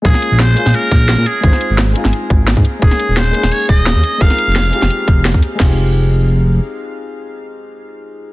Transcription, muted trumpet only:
X:1
M:4/4
L:1/8
Q:"Swing 16ths" 1/4=173
K:Fm
V:1 name="Muted trumpet"
A2 c2 B3 A- | A2 z6 | A2 c2 d e3 | f6 z2 |
z8 | z8 |]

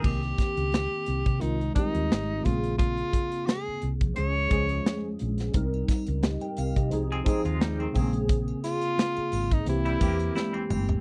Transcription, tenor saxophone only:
X:1
M:4/4
L:1/16
Q:"Swing 16ths" 1/4=87
K:Cphr
V:1 name="Tenor saxophone"
G8 E2 E4 F2 | F4 A2 z2 d6 z2 | z16 | z2 F4- F E =E6 z2 |]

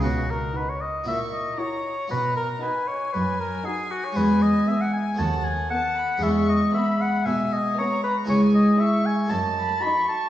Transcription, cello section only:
X:1
M:4/4
L:1/8
Q:1/4=117
K:B
V:1 name="Cello section" clef=bass
B,,2 z2 A,,2 z2 | B,,2 z2 F,,2 z2 | E,,2 z2 D,,2 z2 | E,,2 z2 B,,2 z2 |
[K:C#m] C,,2 z2 F,,2 z2 |]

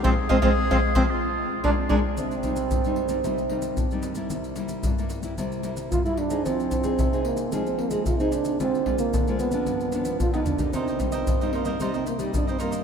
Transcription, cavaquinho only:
X:1
M:4/4
L:1/16
Q:1/4=112
K:Bbmix
V:1 name="Cavaquinho"
[cef] z [cef] [cef] z [cef] z [cef] z4 [ABd] z [ABd] z | [K:Cm] z16 | z16 | z16 |
z16 | [EBce] [Bce] z [Bce]2 [Bce] [EBce] [Bce] [EBce] [Bce] z3 [Bce] [EBce] [Bce] |]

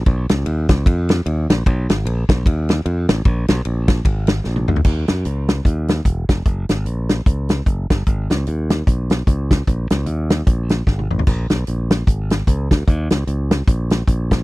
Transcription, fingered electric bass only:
X:1
M:4/4
L:1/8
Q:"Swing" 1/4=150
K:Ebm
V:1 name="Fingered electric bass" clef=bass
=B,,, ^C,, ^D,, C,, F,,2 D,, ^A,,, | C,, A,,, B,,, C,, E,,2 F,, =A,,, | B,,, C,, B,,,2 A,,,2 B,,, =D,, | E,, G,, D,,2 E,,2 _F,,, =F,,, |
G,,, A,,, B,,,2 D,,2 G,,, =G,,, | A,,, D,, E,,2 C,,2 D,,2 | B,,, D,, E,,2 B,,,2 A,,, =A,,, | B,,, C,, B,,,2 A,,,2 D,, =D,, |
E,, D,, D,,2 B,,,2 B,,,2 |]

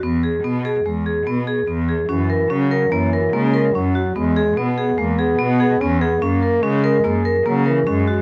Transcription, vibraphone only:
X:1
M:5/4
L:1/8
Q:1/4=145
K:Elyd
V:1 name="Vibraphone"
B, G B, G G, G B, G B, G | C A C A A, A A, A C F | B, G B, G G, G B, G B, G | C A C A A, A A, A C F |]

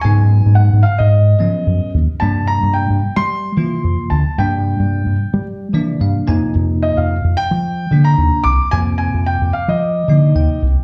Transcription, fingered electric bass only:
X:1
M:4/4
L:1/16
Q:"Swing 16ths" 1/4=110
K:Fdor
V:1 name="Fingered electric bass" clef=bass
A,,3 A,,2 A,, z A,,3 F,2 _G,, z E,, z | G,,3 G,,2 G,, z G,3 =E,2 F,, z D,, z | G,,3 G,,2 G,, z G,3 =E,2 G,, z F,, z | F,,3 F,,2 F,, z F,3 D,2 E,, z C,, z |
F,,3 F,,2 F,, z F,3 D,2 E,, z C,, z |]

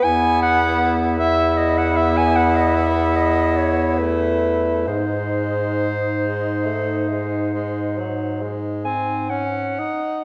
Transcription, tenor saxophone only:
X:1
M:12/8
L:1/8
Q:3/8=46
K:G#phr
V:1 name="Tenor saxophone"
B,3 B,6- B, A,2 | G,3 G, A, G, G, F, G, ^B, C D |]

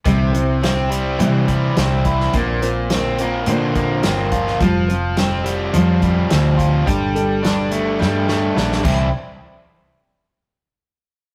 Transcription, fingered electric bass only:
X:1
M:4/4
L:1/8
Q:1/4=106
K:Cmix
V:1 name="Fingered electric bass" clef=bass
C,,4 C,2 C,,2 | B,,,4 B,,2 G,,,2 | F,,,4 F,,2 D,,2 | G,,,4 G,,2 B,,, C,, |
z8 |]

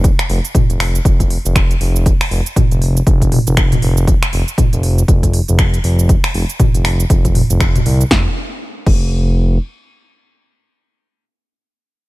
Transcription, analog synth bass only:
X:1
M:4/4
L:1/16
Q:"Swing 16ths" 1/4=119
K:Cphr
V:1 name="Analog synth bass" clef=bass
z2 F,,, z2 F,,,2 z F,,,2 z F,,,2 z F,,,2 | z2 F,,, z2 F,,,2 z F,,,2 z F,,,2 z F,,,2 | z2 F,,, z2 F,,,2 z F,,,2 z F,,,2 z F,,,2 | z2 F,,, z2 F,,,2 z F,,,2 z F,,,2 z C,, z |
F,,, z4 z F,,,6 z4 | z16 |]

